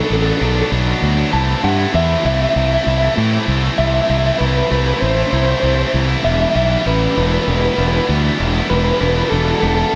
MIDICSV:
0, 0, Header, 1, 4, 480
1, 0, Start_track
1, 0, Key_signature, 1, "minor"
1, 0, Tempo, 614125
1, 1037, Time_signature, 4, 2, 24, 8
1, 7779, End_track
2, 0, Start_track
2, 0, Title_t, "Clean electric guitar"
2, 0, Program_c, 0, 27
2, 34, Note_on_c, 0, 69, 69
2, 95, Note_off_c, 0, 69, 0
2, 102, Note_on_c, 0, 69, 74
2, 164, Note_off_c, 0, 69, 0
2, 170, Note_on_c, 0, 69, 68
2, 220, Note_off_c, 0, 69, 0
2, 224, Note_on_c, 0, 69, 83
2, 285, Note_off_c, 0, 69, 0
2, 292, Note_on_c, 0, 69, 66
2, 348, Note_off_c, 0, 69, 0
2, 351, Note_on_c, 0, 69, 72
2, 408, Note_off_c, 0, 69, 0
2, 411, Note_on_c, 0, 69, 62
2, 473, Note_off_c, 0, 69, 0
2, 479, Note_on_c, 0, 69, 72
2, 541, Note_off_c, 0, 69, 0
2, 1040, Note_on_c, 0, 81, 115
2, 1279, Note_off_c, 0, 81, 0
2, 1282, Note_on_c, 0, 78, 101
2, 1520, Note_off_c, 0, 78, 0
2, 1523, Note_on_c, 0, 76, 97
2, 1754, Note_off_c, 0, 76, 0
2, 1763, Note_on_c, 0, 76, 90
2, 1826, Note_off_c, 0, 76, 0
2, 1830, Note_on_c, 0, 76, 74
2, 1889, Note_off_c, 0, 76, 0
2, 1892, Note_on_c, 0, 76, 84
2, 1942, Note_off_c, 0, 76, 0
2, 1945, Note_on_c, 0, 76, 70
2, 2005, Note_off_c, 0, 76, 0
2, 2008, Note_on_c, 0, 76, 91
2, 2070, Note_off_c, 0, 76, 0
2, 2080, Note_on_c, 0, 76, 80
2, 2131, Note_off_c, 0, 76, 0
2, 2134, Note_on_c, 0, 76, 92
2, 2197, Note_off_c, 0, 76, 0
2, 2206, Note_on_c, 0, 76, 70
2, 2262, Note_off_c, 0, 76, 0
2, 2265, Note_on_c, 0, 76, 84
2, 2325, Note_off_c, 0, 76, 0
2, 2328, Note_on_c, 0, 76, 65
2, 2375, Note_off_c, 0, 76, 0
2, 2378, Note_on_c, 0, 76, 79
2, 2440, Note_off_c, 0, 76, 0
2, 2954, Note_on_c, 0, 76, 125
2, 3008, Note_off_c, 0, 76, 0
2, 3011, Note_on_c, 0, 76, 99
2, 3073, Note_off_c, 0, 76, 0
2, 3078, Note_on_c, 0, 76, 119
2, 3136, Note_off_c, 0, 76, 0
2, 3139, Note_on_c, 0, 76, 100
2, 3200, Note_off_c, 0, 76, 0
2, 3203, Note_on_c, 0, 76, 113
2, 3261, Note_off_c, 0, 76, 0
2, 3264, Note_on_c, 0, 76, 96
2, 3326, Note_off_c, 0, 76, 0
2, 3329, Note_on_c, 0, 76, 111
2, 3391, Note_off_c, 0, 76, 0
2, 3394, Note_on_c, 0, 76, 88
2, 3423, Note_off_c, 0, 76, 0
2, 3426, Note_on_c, 0, 71, 108
2, 3487, Note_off_c, 0, 71, 0
2, 3490, Note_on_c, 0, 71, 83
2, 3549, Note_off_c, 0, 71, 0
2, 3552, Note_on_c, 0, 71, 93
2, 3611, Note_off_c, 0, 71, 0
2, 3614, Note_on_c, 0, 71, 88
2, 3675, Note_off_c, 0, 71, 0
2, 3679, Note_on_c, 0, 71, 101
2, 3736, Note_off_c, 0, 71, 0
2, 3739, Note_on_c, 0, 71, 85
2, 3795, Note_off_c, 0, 71, 0
2, 3798, Note_on_c, 0, 71, 88
2, 3856, Note_off_c, 0, 71, 0
2, 3859, Note_on_c, 0, 71, 75
2, 3908, Note_off_c, 0, 71, 0
2, 3911, Note_on_c, 0, 72, 90
2, 3968, Note_off_c, 0, 72, 0
2, 3972, Note_on_c, 0, 72, 68
2, 4020, Note_off_c, 0, 72, 0
2, 4023, Note_on_c, 0, 72, 78
2, 4080, Note_off_c, 0, 72, 0
2, 4086, Note_on_c, 0, 72, 65
2, 4142, Note_off_c, 0, 72, 0
2, 4145, Note_on_c, 0, 72, 79
2, 4195, Note_off_c, 0, 72, 0
2, 4198, Note_on_c, 0, 72, 66
2, 4256, Note_off_c, 0, 72, 0
2, 4260, Note_on_c, 0, 72, 82
2, 4307, Note_off_c, 0, 72, 0
2, 4310, Note_on_c, 0, 72, 65
2, 4368, Note_off_c, 0, 72, 0
2, 4374, Note_on_c, 0, 72, 80
2, 4426, Note_off_c, 0, 72, 0
2, 4430, Note_on_c, 0, 72, 65
2, 4486, Note_off_c, 0, 72, 0
2, 4489, Note_on_c, 0, 72, 69
2, 4546, Note_off_c, 0, 72, 0
2, 4552, Note_on_c, 0, 72, 63
2, 4610, Note_off_c, 0, 72, 0
2, 4880, Note_on_c, 0, 76, 122
2, 4936, Note_off_c, 0, 76, 0
2, 4939, Note_on_c, 0, 76, 98
2, 5000, Note_off_c, 0, 76, 0
2, 5004, Note_on_c, 0, 76, 117
2, 5065, Note_off_c, 0, 76, 0
2, 5074, Note_on_c, 0, 76, 96
2, 5124, Note_off_c, 0, 76, 0
2, 5127, Note_on_c, 0, 76, 115
2, 5185, Note_off_c, 0, 76, 0
2, 5188, Note_on_c, 0, 76, 101
2, 5244, Note_off_c, 0, 76, 0
2, 5248, Note_on_c, 0, 76, 112
2, 5306, Note_off_c, 0, 76, 0
2, 5309, Note_on_c, 0, 76, 86
2, 5365, Note_off_c, 0, 76, 0
2, 5368, Note_on_c, 0, 71, 93
2, 5599, Note_off_c, 0, 71, 0
2, 5609, Note_on_c, 0, 71, 90
2, 5670, Note_off_c, 0, 71, 0
2, 5673, Note_on_c, 0, 71, 59
2, 5732, Note_off_c, 0, 71, 0
2, 5736, Note_on_c, 0, 71, 71
2, 5791, Note_off_c, 0, 71, 0
2, 5794, Note_on_c, 0, 71, 70
2, 5852, Note_off_c, 0, 71, 0
2, 5855, Note_on_c, 0, 71, 82
2, 5912, Note_off_c, 0, 71, 0
2, 5915, Note_on_c, 0, 71, 67
2, 5976, Note_off_c, 0, 71, 0
2, 5979, Note_on_c, 0, 71, 83
2, 6041, Note_off_c, 0, 71, 0
2, 6048, Note_on_c, 0, 71, 65
2, 6100, Note_off_c, 0, 71, 0
2, 6103, Note_on_c, 0, 71, 73
2, 6154, Note_off_c, 0, 71, 0
2, 6157, Note_on_c, 0, 71, 64
2, 6219, Note_off_c, 0, 71, 0
2, 6223, Note_on_c, 0, 71, 66
2, 6285, Note_off_c, 0, 71, 0
2, 6797, Note_on_c, 0, 71, 119
2, 6849, Note_off_c, 0, 71, 0
2, 6852, Note_on_c, 0, 71, 89
2, 6909, Note_off_c, 0, 71, 0
2, 6912, Note_on_c, 0, 71, 117
2, 6974, Note_off_c, 0, 71, 0
2, 6986, Note_on_c, 0, 71, 100
2, 7034, Note_off_c, 0, 71, 0
2, 7037, Note_on_c, 0, 71, 122
2, 7099, Note_off_c, 0, 71, 0
2, 7104, Note_on_c, 0, 71, 98
2, 7163, Note_off_c, 0, 71, 0
2, 7166, Note_on_c, 0, 71, 105
2, 7226, Note_off_c, 0, 71, 0
2, 7229, Note_on_c, 0, 71, 95
2, 7262, Note_off_c, 0, 71, 0
2, 7265, Note_on_c, 0, 69, 110
2, 7494, Note_off_c, 0, 69, 0
2, 7504, Note_on_c, 0, 69, 94
2, 7561, Note_off_c, 0, 69, 0
2, 7565, Note_on_c, 0, 69, 71
2, 7614, Note_off_c, 0, 69, 0
2, 7617, Note_on_c, 0, 69, 78
2, 7675, Note_off_c, 0, 69, 0
2, 7679, Note_on_c, 0, 69, 69
2, 7726, Note_off_c, 0, 69, 0
2, 7729, Note_on_c, 0, 69, 85
2, 7779, Note_off_c, 0, 69, 0
2, 7779, End_track
3, 0, Start_track
3, 0, Title_t, "Overdriven electric guitar"
3, 0, Program_c, 1, 29
3, 0, Note_on_c, 1, 47, 85
3, 0, Note_on_c, 1, 54, 64
3, 0, Note_on_c, 1, 59, 65
3, 0, Note_on_c, 1, 62, 77
3, 182, Note_off_c, 1, 62, 0
3, 192, Note_on_c, 1, 62, 79
3, 198, Note_off_c, 1, 47, 0
3, 198, Note_off_c, 1, 54, 0
3, 198, Note_off_c, 1, 59, 0
3, 201, Note_on_c, 1, 59, 74
3, 208, Note_on_c, 1, 54, 66
3, 303, Note_off_c, 1, 54, 0
3, 308, Note_on_c, 1, 47, 77
3, 312, Note_on_c, 1, 54, 83
3, 313, Note_off_c, 1, 62, 0
3, 315, Note_off_c, 1, 59, 0
3, 318, Note_on_c, 1, 59, 86
3, 322, Note_on_c, 1, 62, 98
3, 418, Note_off_c, 1, 62, 0
3, 427, Note_on_c, 1, 62, 75
3, 432, Note_off_c, 1, 59, 0
3, 433, Note_off_c, 1, 54, 0
3, 435, Note_on_c, 1, 59, 70
3, 443, Note_on_c, 1, 54, 64
3, 544, Note_off_c, 1, 47, 0
3, 551, Note_off_c, 1, 54, 0
3, 553, Note_on_c, 1, 47, 94
3, 559, Note_off_c, 1, 59, 0
3, 559, Note_off_c, 1, 62, 0
3, 560, Note_on_c, 1, 54, 104
3, 563, Note_on_c, 1, 59, 112
3, 568, Note_on_c, 1, 62, 113
3, 664, Note_off_c, 1, 62, 0
3, 674, Note_on_c, 1, 62, 75
3, 680, Note_off_c, 1, 54, 0
3, 680, Note_off_c, 1, 59, 0
3, 683, Note_on_c, 1, 59, 63
3, 690, Note_on_c, 1, 54, 67
3, 905, Note_off_c, 1, 62, 0
3, 914, Note_on_c, 1, 62, 84
3, 916, Note_off_c, 1, 47, 0
3, 917, Note_off_c, 1, 59, 0
3, 920, Note_off_c, 1, 54, 0
3, 920, Note_on_c, 1, 59, 73
3, 929, Note_on_c, 1, 54, 66
3, 1021, Note_off_c, 1, 62, 0
3, 1029, Note_off_c, 1, 54, 0
3, 1030, Note_on_c, 1, 48, 109
3, 1034, Note_on_c, 1, 52, 119
3, 1035, Note_off_c, 1, 59, 0
3, 1038, Note_on_c, 1, 57, 108
3, 1041, Note_on_c, 1, 64, 119
3, 1267, Note_off_c, 1, 48, 0
3, 1270, Note_on_c, 1, 48, 91
3, 1271, Note_off_c, 1, 52, 0
3, 1275, Note_on_c, 1, 52, 86
3, 1277, Note_off_c, 1, 57, 0
3, 1280, Note_off_c, 1, 64, 0
3, 1280, Note_on_c, 1, 57, 80
3, 1283, Note_on_c, 1, 64, 81
3, 1391, Note_off_c, 1, 64, 0
3, 1394, Note_on_c, 1, 64, 88
3, 1398, Note_off_c, 1, 57, 0
3, 1401, Note_on_c, 1, 57, 80
3, 1405, Note_off_c, 1, 52, 0
3, 1408, Note_on_c, 1, 52, 64
3, 1509, Note_off_c, 1, 48, 0
3, 1513, Note_on_c, 1, 48, 100
3, 1517, Note_off_c, 1, 52, 0
3, 1521, Note_off_c, 1, 57, 0
3, 1521, Note_on_c, 1, 52, 97
3, 1523, Note_off_c, 1, 64, 0
3, 1525, Note_on_c, 1, 57, 105
3, 1526, Note_on_c, 1, 64, 115
3, 1754, Note_off_c, 1, 48, 0
3, 1757, Note_on_c, 1, 48, 90
3, 1759, Note_off_c, 1, 52, 0
3, 1762, Note_on_c, 1, 52, 94
3, 1765, Note_off_c, 1, 57, 0
3, 1768, Note_off_c, 1, 64, 0
3, 1768, Note_on_c, 1, 57, 93
3, 1771, Note_on_c, 1, 64, 96
3, 1872, Note_off_c, 1, 64, 0
3, 1873, Note_off_c, 1, 57, 0
3, 1875, Note_on_c, 1, 64, 76
3, 1882, Note_on_c, 1, 57, 76
3, 1886, Note_off_c, 1, 52, 0
3, 1889, Note_on_c, 1, 52, 62
3, 2113, Note_off_c, 1, 64, 0
3, 2115, Note_off_c, 1, 57, 0
3, 2116, Note_on_c, 1, 64, 80
3, 2118, Note_off_c, 1, 48, 0
3, 2125, Note_on_c, 1, 57, 75
3, 2128, Note_off_c, 1, 52, 0
3, 2131, Note_on_c, 1, 52, 68
3, 2236, Note_on_c, 1, 48, 76
3, 2237, Note_off_c, 1, 57, 0
3, 2240, Note_off_c, 1, 52, 0
3, 2243, Note_on_c, 1, 52, 99
3, 2246, Note_off_c, 1, 64, 0
3, 2247, Note_on_c, 1, 57, 84
3, 2249, Note_on_c, 1, 64, 89
3, 2357, Note_off_c, 1, 64, 0
3, 2359, Note_off_c, 1, 57, 0
3, 2360, Note_on_c, 1, 64, 75
3, 2369, Note_on_c, 1, 57, 79
3, 2372, Note_off_c, 1, 52, 0
3, 2375, Note_on_c, 1, 52, 61
3, 2468, Note_off_c, 1, 48, 0
3, 2477, Note_on_c, 1, 48, 98
3, 2479, Note_off_c, 1, 57, 0
3, 2481, Note_off_c, 1, 52, 0
3, 2484, Note_on_c, 1, 52, 98
3, 2489, Note_off_c, 1, 64, 0
3, 2489, Note_on_c, 1, 57, 110
3, 2493, Note_on_c, 1, 64, 110
3, 2600, Note_off_c, 1, 64, 0
3, 2601, Note_off_c, 1, 57, 0
3, 2603, Note_on_c, 1, 64, 77
3, 2610, Note_on_c, 1, 57, 69
3, 2616, Note_off_c, 1, 52, 0
3, 2620, Note_on_c, 1, 52, 60
3, 2837, Note_off_c, 1, 64, 0
3, 2838, Note_off_c, 1, 48, 0
3, 2840, Note_on_c, 1, 64, 80
3, 2841, Note_off_c, 1, 57, 0
3, 2851, Note_on_c, 1, 57, 72
3, 2854, Note_off_c, 1, 52, 0
3, 2857, Note_on_c, 1, 52, 72
3, 2957, Note_on_c, 1, 48, 107
3, 2961, Note_off_c, 1, 52, 0
3, 2962, Note_off_c, 1, 57, 0
3, 2964, Note_on_c, 1, 52, 98
3, 2971, Note_off_c, 1, 64, 0
3, 2971, Note_on_c, 1, 57, 115
3, 2974, Note_on_c, 1, 64, 116
3, 3191, Note_off_c, 1, 48, 0
3, 3200, Note_on_c, 1, 48, 87
3, 3201, Note_off_c, 1, 52, 0
3, 3201, Note_off_c, 1, 57, 0
3, 3204, Note_on_c, 1, 52, 90
3, 3210, Note_off_c, 1, 64, 0
3, 3211, Note_on_c, 1, 57, 83
3, 3213, Note_on_c, 1, 64, 92
3, 3316, Note_off_c, 1, 64, 0
3, 3317, Note_off_c, 1, 57, 0
3, 3319, Note_on_c, 1, 64, 79
3, 3326, Note_on_c, 1, 57, 71
3, 3332, Note_off_c, 1, 52, 0
3, 3335, Note_on_c, 1, 52, 64
3, 3422, Note_off_c, 1, 48, 0
3, 3431, Note_on_c, 1, 48, 105
3, 3436, Note_off_c, 1, 52, 0
3, 3436, Note_off_c, 1, 57, 0
3, 3439, Note_on_c, 1, 52, 101
3, 3445, Note_on_c, 1, 57, 110
3, 3446, Note_off_c, 1, 64, 0
3, 3449, Note_on_c, 1, 64, 106
3, 3663, Note_off_c, 1, 48, 0
3, 3672, Note_on_c, 1, 48, 78
3, 3674, Note_off_c, 1, 57, 0
3, 3675, Note_off_c, 1, 52, 0
3, 3678, Note_on_c, 1, 52, 80
3, 3683, Note_on_c, 1, 57, 94
3, 3684, Note_off_c, 1, 64, 0
3, 3687, Note_on_c, 1, 64, 96
3, 3790, Note_off_c, 1, 64, 0
3, 3792, Note_off_c, 1, 57, 0
3, 3793, Note_on_c, 1, 64, 73
3, 3801, Note_on_c, 1, 57, 64
3, 3804, Note_off_c, 1, 52, 0
3, 3807, Note_on_c, 1, 52, 65
3, 4035, Note_off_c, 1, 48, 0
3, 4035, Note_off_c, 1, 64, 0
3, 4038, Note_off_c, 1, 57, 0
3, 4039, Note_on_c, 1, 64, 77
3, 4047, Note_on_c, 1, 57, 68
3, 4052, Note_off_c, 1, 52, 0
3, 4055, Note_on_c, 1, 52, 67
3, 4154, Note_off_c, 1, 57, 0
3, 4154, Note_on_c, 1, 48, 80
3, 4159, Note_off_c, 1, 52, 0
3, 4162, Note_on_c, 1, 52, 89
3, 4163, Note_on_c, 1, 57, 93
3, 4166, Note_off_c, 1, 64, 0
3, 4169, Note_on_c, 1, 64, 85
3, 4276, Note_off_c, 1, 57, 0
3, 4276, Note_off_c, 1, 64, 0
3, 4279, Note_on_c, 1, 64, 81
3, 4286, Note_on_c, 1, 57, 72
3, 4289, Note_off_c, 1, 52, 0
3, 4292, Note_on_c, 1, 52, 63
3, 4384, Note_off_c, 1, 48, 0
3, 4394, Note_on_c, 1, 48, 87
3, 4399, Note_off_c, 1, 52, 0
3, 4399, Note_off_c, 1, 57, 0
3, 4402, Note_on_c, 1, 52, 102
3, 4407, Note_off_c, 1, 64, 0
3, 4408, Note_on_c, 1, 57, 104
3, 4410, Note_on_c, 1, 64, 92
3, 4510, Note_off_c, 1, 64, 0
3, 4513, Note_off_c, 1, 57, 0
3, 4513, Note_on_c, 1, 64, 73
3, 4523, Note_off_c, 1, 52, 0
3, 4523, Note_on_c, 1, 57, 66
3, 4526, Note_on_c, 1, 52, 61
3, 4750, Note_off_c, 1, 64, 0
3, 4751, Note_off_c, 1, 57, 0
3, 4753, Note_on_c, 1, 64, 80
3, 4756, Note_off_c, 1, 48, 0
3, 4761, Note_on_c, 1, 57, 68
3, 4765, Note_off_c, 1, 52, 0
3, 4768, Note_on_c, 1, 52, 70
3, 4865, Note_off_c, 1, 57, 0
3, 4873, Note_off_c, 1, 52, 0
3, 4873, Note_on_c, 1, 52, 96
3, 4881, Note_on_c, 1, 55, 115
3, 4885, Note_on_c, 1, 59, 100
3, 4887, Note_off_c, 1, 64, 0
3, 4890, Note_on_c, 1, 64, 102
3, 5110, Note_off_c, 1, 52, 0
3, 5113, Note_on_c, 1, 52, 84
3, 5115, Note_off_c, 1, 55, 0
3, 5118, Note_on_c, 1, 55, 88
3, 5120, Note_off_c, 1, 59, 0
3, 5123, Note_on_c, 1, 59, 83
3, 5127, Note_off_c, 1, 64, 0
3, 5130, Note_on_c, 1, 64, 85
3, 5230, Note_off_c, 1, 64, 0
3, 5233, Note_on_c, 1, 64, 70
3, 5238, Note_off_c, 1, 59, 0
3, 5241, Note_on_c, 1, 59, 71
3, 5243, Note_off_c, 1, 55, 0
3, 5246, Note_on_c, 1, 55, 63
3, 5350, Note_off_c, 1, 52, 0
3, 5353, Note_on_c, 1, 52, 105
3, 5354, Note_off_c, 1, 55, 0
3, 5357, Note_on_c, 1, 55, 98
3, 5359, Note_off_c, 1, 59, 0
3, 5362, Note_on_c, 1, 59, 99
3, 5363, Note_off_c, 1, 64, 0
3, 5366, Note_on_c, 1, 64, 101
3, 5591, Note_off_c, 1, 52, 0
3, 5594, Note_on_c, 1, 52, 87
3, 5597, Note_off_c, 1, 55, 0
3, 5600, Note_on_c, 1, 55, 77
3, 5603, Note_off_c, 1, 59, 0
3, 5604, Note_off_c, 1, 64, 0
3, 5606, Note_on_c, 1, 59, 82
3, 5607, Note_on_c, 1, 64, 101
3, 5709, Note_off_c, 1, 64, 0
3, 5712, Note_on_c, 1, 64, 70
3, 5713, Note_off_c, 1, 59, 0
3, 5720, Note_off_c, 1, 55, 0
3, 5723, Note_on_c, 1, 59, 70
3, 5730, Note_on_c, 1, 55, 60
3, 5943, Note_off_c, 1, 64, 0
3, 5946, Note_off_c, 1, 59, 0
3, 5946, Note_on_c, 1, 64, 77
3, 5953, Note_off_c, 1, 55, 0
3, 5955, Note_on_c, 1, 59, 76
3, 5963, Note_on_c, 1, 55, 66
3, 6066, Note_off_c, 1, 55, 0
3, 6067, Note_off_c, 1, 52, 0
3, 6070, Note_on_c, 1, 52, 79
3, 6073, Note_off_c, 1, 59, 0
3, 6075, Note_on_c, 1, 55, 76
3, 6082, Note_off_c, 1, 64, 0
3, 6082, Note_on_c, 1, 59, 84
3, 6085, Note_on_c, 1, 64, 87
3, 6184, Note_off_c, 1, 64, 0
3, 6186, Note_off_c, 1, 59, 0
3, 6187, Note_on_c, 1, 64, 82
3, 6194, Note_off_c, 1, 55, 0
3, 6196, Note_on_c, 1, 59, 72
3, 6203, Note_on_c, 1, 55, 65
3, 6297, Note_off_c, 1, 52, 0
3, 6297, Note_off_c, 1, 55, 0
3, 6301, Note_off_c, 1, 59, 0
3, 6301, Note_on_c, 1, 52, 96
3, 6306, Note_on_c, 1, 55, 94
3, 6310, Note_on_c, 1, 59, 104
3, 6311, Note_off_c, 1, 64, 0
3, 6314, Note_on_c, 1, 64, 105
3, 6423, Note_off_c, 1, 64, 0
3, 6426, Note_on_c, 1, 64, 70
3, 6427, Note_off_c, 1, 59, 0
3, 6433, Note_off_c, 1, 55, 0
3, 6436, Note_on_c, 1, 59, 72
3, 6442, Note_on_c, 1, 55, 66
3, 6664, Note_off_c, 1, 64, 0
3, 6666, Note_off_c, 1, 59, 0
3, 6667, Note_on_c, 1, 64, 88
3, 6672, Note_off_c, 1, 55, 0
3, 6675, Note_on_c, 1, 59, 81
3, 6681, Note_on_c, 1, 55, 72
3, 6784, Note_off_c, 1, 52, 0
3, 6784, Note_off_c, 1, 55, 0
3, 6787, Note_off_c, 1, 59, 0
3, 6787, Note_on_c, 1, 52, 98
3, 6793, Note_on_c, 1, 55, 105
3, 6796, Note_on_c, 1, 59, 108
3, 6797, Note_off_c, 1, 64, 0
3, 6800, Note_on_c, 1, 64, 112
3, 7018, Note_off_c, 1, 52, 0
3, 7020, Note_off_c, 1, 55, 0
3, 7022, Note_on_c, 1, 52, 80
3, 7024, Note_off_c, 1, 59, 0
3, 7029, Note_on_c, 1, 55, 84
3, 7033, Note_on_c, 1, 59, 82
3, 7035, Note_off_c, 1, 64, 0
3, 7038, Note_on_c, 1, 64, 96
3, 7143, Note_off_c, 1, 59, 0
3, 7143, Note_off_c, 1, 64, 0
3, 7146, Note_on_c, 1, 64, 80
3, 7150, Note_off_c, 1, 55, 0
3, 7152, Note_on_c, 1, 59, 70
3, 7160, Note_on_c, 1, 55, 62
3, 7262, Note_off_c, 1, 55, 0
3, 7264, Note_off_c, 1, 52, 0
3, 7267, Note_on_c, 1, 52, 105
3, 7268, Note_off_c, 1, 59, 0
3, 7272, Note_on_c, 1, 55, 100
3, 7277, Note_off_c, 1, 64, 0
3, 7277, Note_on_c, 1, 59, 106
3, 7280, Note_on_c, 1, 64, 109
3, 7503, Note_off_c, 1, 52, 0
3, 7503, Note_off_c, 1, 55, 0
3, 7506, Note_on_c, 1, 52, 81
3, 7507, Note_off_c, 1, 59, 0
3, 7512, Note_on_c, 1, 55, 88
3, 7516, Note_on_c, 1, 59, 91
3, 7517, Note_off_c, 1, 64, 0
3, 7520, Note_on_c, 1, 64, 98
3, 7626, Note_off_c, 1, 64, 0
3, 7628, Note_off_c, 1, 59, 0
3, 7630, Note_on_c, 1, 64, 81
3, 7635, Note_off_c, 1, 55, 0
3, 7637, Note_on_c, 1, 59, 73
3, 7644, Note_on_c, 1, 55, 63
3, 7779, Note_off_c, 1, 52, 0
3, 7779, Note_off_c, 1, 55, 0
3, 7779, Note_off_c, 1, 59, 0
3, 7779, Note_off_c, 1, 64, 0
3, 7779, End_track
4, 0, Start_track
4, 0, Title_t, "Fingered electric bass"
4, 0, Program_c, 2, 33
4, 77, Note_on_c, 2, 33, 92
4, 235, Note_off_c, 2, 33, 0
4, 319, Note_on_c, 2, 35, 92
4, 477, Note_off_c, 2, 35, 0
4, 559, Note_on_c, 2, 35, 94
4, 717, Note_off_c, 2, 35, 0
4, 797, Note_on_c, 2, 38, 98
4, 955, Note_off_c, 2, 38, 0
4, 1040, Note_on_c, 2, 36, 98
4, 1197, Note_off_c, 2, 36, 0
4, 1279, Note_on_c, 2, 43, 104
4, 1437, Note_off_c, 2, 43, 0
4, 1515, Note_on_c, 2, 40, 103
4, 1674, Note_off_c, 2, 40, 0
4, 1755, Note_on_c, 2, 36, 101
4, 1915, Note_off_c, 2, 36, 0
4, 1998, Note_on_c, 2, 36, 99
4, 2156, Note_off_c, 2, 36, 0
4, 2237, Note_on_c, 2, 36, 89
4, 2396, Note_off_c, 2, 36, 0
4, 2478, Note_on_c, 2, 45, 97
4, 2636, Note_off_c, 2, 45, 0
4, 2717, Note_on_c, 2, 36, 99
4, 2876, Note_off_c, 2, 36, 0
4, 2957, Note_on_c, 2, 36, 103
4, 3116, Note_off_c, 2, 36, 0
4, 3199, Note_on_c, 2, 36, 99
4, 3357, Note_off_c, 2, 36, 0
4, 3441, Note_on_c, 2, 36, 97
4, 3598, Note_off_c, 2, 36, 0
4, 3681, Note_on_c, 2, 36, 98
4, 3838, Note_off_c, 2, 36, 0
4, 3921, Note_on_c, 2, 33, 94
4, 4079, Note_off_c, 2, 33, 0
4, 4160, Note_on_c, 2, 36, 93
4, 4317, Note_off_c, 2, 36, 0
4, 4397, Note_on_c, 2, 36, 92
4, 4556, Note_off_c, 2, 36, 0
4, 4641, Note_on_c, 2, 36, 92
4, 4798, Note_off_c, 2, 36, 0
4, 4878, Note_on_c, 2, 28, 98
4, 5036, Note_off_c, 2, 28, 0
4, 5120, Note_on_c, 2, 35, 105
4, 5277, Note_off_c, 2, 35, 0
4, 5359, Note_on_c, 2, 33, 92
4, 5517, Note_off_c, 2, 33, 0
4, 5603, Note_on_c, 2, 28, 91
4, 5759, Note_off_c, 2, 28, 0
4, 5840, Note_on_c, 2, 28, 91
4, 5997, Note_off_c, 2, 28, 0
4, 6078, Note_on_c, 2, 28, 90
4, 6236, Note_off_c, 2, 28, 0
4, 6321, Note_on_c, 2, 38, 97
4, 6478, Note_off_c, 2, 38, 0
4, 6562, Note_on_c, 2, 28, 91
4, 6718, Note_off_c, 2, 28, 0
4, 6802, Note_on_c, 2, 28, 101
4, 6958, Note_off_c, 2, 28, 0
4, 7038, Note_on_c, 2, 28, 98
4, 7195, Note_off_c, 2, 28, 0
4, 7280, Note_on_c, 2, 28, 102
4, 7436, Note_off_c, 2, 28, 0
4, 7522, Note_on_c, 2, 28, 104
4, 7678, Note_off_c, 2, 28, 0
4, 7779, End_track
0, 0, End_of_file